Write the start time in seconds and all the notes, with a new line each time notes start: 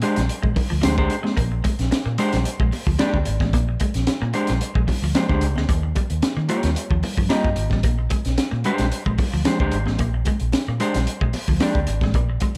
0.02 G#3 D4 G4 C5, closed hi-hat
0.16 A#1, snare, closed hi-hat, low conga
0.29 closed hi-hat
0.43 A#1 G#3, kick
0.56 muted clean electric guitar stroke, kick, open hi-hat, muted conga, low conga
0.70 D2 F3
0.82 D2 F3 G#3 D4 G4 C5, snare, closed hi-hat, high conga
0.98 G#3 D4 G4 C5, kick
1.08 muted clean electric guitar stroke, closed hi-hat
1.23 G#3, snare, high conga
1.37 A#1 A#3, kick, closed hi-hat, muted conga
1.52 muted clean electric guitar stroke
1.64 G#3, kick, closed hi-hat, muted conga
1.79 A#1, snare, closed hi-hat
1.91 muted clean electric guitar stroke, snare, closed hi-hat, high conga
2.06 A#2 A#3
2.18 G#3 D4 G4 C5, closed hi-hat
2.32 A#1, snare, closed hi-hat, low conga
2.44 closed hi-hat, muted conga
2.60 A#1 G#3, kick
2.72 muted clean electric guitar stroke, open hi-hat, muted conga
2.87 D2 F3, kick
2.99 F3 G#3 D4 G4 D5, snare, closed hi-hat, high conga
3.13 D2, kick
3.25 G#1, muted clean electric guitar stroke, closed hi-hat
3.40 A1 G#3, kick, snare, high conga
3.53 A#1 A#3, kick, closed hi-hat, muted conga
3.69 muted clean electric guitar stroke
3.80 G#3, kick, closed hi-hat, muted conga
3.94 A#1, snare, closed hi-hat
4.07 muted clean electric guitar stroke, snare, closed hi-hat, high conga
4.22 A#2 A#3
4.33 G#3 D4 G4 C5, closed hi-hat
4.47 A#1, snare, closed hi-hat, low conga
4.61 closed hi-hat
4.75 A#1 G#3, kick
4.88 muted clean electric guitar stroke, kick, open hi-hat, muted conga, low conga
5.02 D2 F3
5.15 F3 G#3 D4 G4 C5, snare, closed hi-hat, high conga
5.29 D2 G#3 D4 G4 C5, kick
5.41 C#2, muted clean electric guitar stroke, closed hi-hat
5.56 D2 G#3, snare, high conga
5.69 D#2 A#3, kick, closed hi-hat, muted conga
5.83 muted clean electric guitar stroke
5.95 G3, kick, closed hi-hat, muted conga
6.10 D#2, closed hi-hat
6.22 muted fingered electric bass stroke, muted clean electric guitar stroke, snare, closed hi-hat, high conga
6.37 D#3 A#3
6.49 G3 A#3 F4 G4 C#5, closed hi-hat
6.63 D#2, snare, closed hi-hat, low conga
6.75 closed hi-hat, muted conga
6.91 D#2 F3, kick
7.03 muted clean electric guitar stroke, open hi-hat, muted conga, low conga
7.18 G2 F3, kick
7.29 G3 A#3 F4 G4 D#5, snare, closed hi-hat, high conga
7.45 G2, kick
7.56 G#1, muted clean electric guitar stroke, closed hi-hat
7.70 A1 G3, kick, snare, high conga
7.83 A#1 A#3, kick, closed hi-hat, muted conga
7.99 muted clean electric guitar stroke
8.10 G#3, kick, closed hi-hat, muted conga
8.25 A#1, snare, closed hi-hat
8.38 muted clean electric guitar stroke, muted fingered electric bass stroke, snare, closed hi-hat, high conga
8.51 A#2 A#3
8.64 G#3 D4 G4 C5, closed hi-hat
8.78 A#1, snare, closed hi-hat, low conga
8.92 closed hi-hat
9.06 A#1 G#3, kick
9.18 muted clean electric guitar stroke, kick, open hi-hat, muted conga, low conga
9.34 D2 F3
9.44 F3 G#3 D4 G4 C5, snare, closed hi-hat, high conga
9.60 D2 G#3 D4 G4 C5, kick
9.71 G#1, muted clean electric guitar stroke, closed hi-hat
9.86 A1 G#3, snare, high conga
9.98 A#1 A#3, kick, closed hi-hat, muted conga
10.14 muted clean electric guitar stroke
10.25 G#3, kick, closed hi-hat, muted conga
10.40 A#1, closed hi-hat
10.52 muted clean electric guitar stroke, snare, closed hi-hat, high conga
10.68 A#2 A#3
10.80 G#3 D4 G4 C5, closed hi-hat
10.94 A#1, snare, closed hi-hat, low conga
11.06 closed hi-hat, muted conga
11.21 A#1 G#3, kick
11.33 muted clean electric guitar stroke, open hi-hat, muted conga
11.48 D2 F3, kick
11.60 F3 G#3 D4 G4 D5, snare, closed hi-hat, high conga
11.75 D2, kick
11.87 G#1, muted clean electric guitar stroke, closed hi-hat
12.01 A1 G#3, kick, snare, high conga
12.14 A#1 A#3, kick, closed hi-hat, muted conga
12.30 muted clean electric guitar stroke
12.40 G#3, kick, closed hi-hat, muted conga